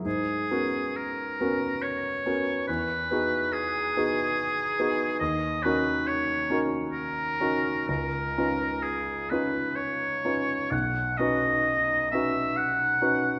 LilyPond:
<<
  \new Staff \with { instrumentName = "Oboe" } { \time 3/4 \key gis \minor \tempo 4 = 68 gis'4 ais'4 cis''4 | b'4 gis'2 | dis''8 b'8 cis''8 r8 ais'4 | ais'4 gis'8 b'8 cis''4 |
fis''8 dis''4 e''8 fis''4 | }
  \new Staff \with { instrumentName = "Grand piano" } { \time 3/4 \key gis \minor gis,8 <b cis' fis' ais'>4 <b cis' fis' ais'>4 <b cis' fis' ais'>8 | e,8 <b dis' fis' gis'>4 <b dis' fis' gis'>4 <b dis' fis' gis'>8 | dis,8 <cis' dis' fis' ais'>4 <cis' dis' fis' ais'>4 <cis' dis' fis' ais'>8 | cis,8 <cis' dis' eis' b'>4 <cis' dis' eis' b'>4 <cis' dis' eis' b'>8 |
b,,8 <cis' dis' fis' b'>4 <cis' dis' fis' b'>4 <cis' dis' fis' b'>8 | }
>>